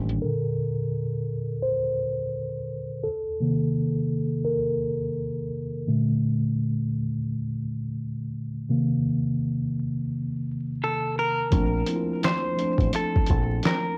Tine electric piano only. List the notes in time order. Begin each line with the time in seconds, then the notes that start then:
Already playing: D#3 G3 A#3 D4
0.22 A#2 D3 A4 A#4
1.62 C5
3.03 A4
3.40 C3 D#3 A#3
4.45 A#4
5.87 A#2 D3 A3
8.69 C3 D#3 A#3
11.51 F3 A3 C4 D4
11.86 F3 A#3 C4 E4
11.96 F4
12.56 F3 A3 C4 D4